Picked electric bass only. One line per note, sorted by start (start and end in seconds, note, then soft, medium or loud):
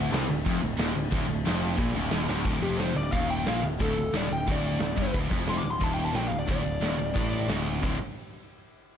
0.00 0.11 D1 loud
0.12 0.28 C2 loud
0.29 0.44 D1 medium
0.46 0.61 F1 loud
0.64 0.78 D1 medium
0.79 0.94 D#1 loud
0.95 1.11 D1 medium
1.13 1.28 D1 loud
1.28 1.44 D1 medium
1.46 1.77 F1 loud
1.79 1.94 A#1 loud
1.95 2.11 D1 loud
2.12 2.28 D#1 medium
2.29 2.45 D1 medium
2.46 2.62 D1 medium
2.62 2.94 F1 medium
2.96 3.12 D1 medium
3.13 3.44 D#1 medium
3.47 3.62 A#1 medium
3.63 3.79 D1 medium
3.80 3.96 D1 medium
3.96 4.12 D1 medium
4.13 4.29 D#1 medium
4.30 4.46 D1 medium
4.48 4.79 D1 medium
4.79 4.96 D1 medium
4.98 5.13 G1 medium
5.14 5.30 D1 medium
5.31 5.62 F1 loud
5.66 5.81 D1 medium
5.82 6.13 D#1 medium
6.14 6.30 A#1 medium
6.32 6.48 D1 medium
6.49 6.64 D1 medium
6.65 6.81 D1 medium
6.82 6.98 D#1 medium
6.99 7.15 D1 medium
7.16 7.47 A1 medium
7.49 7.81 D1 medium
7.83 7.99 D1 medium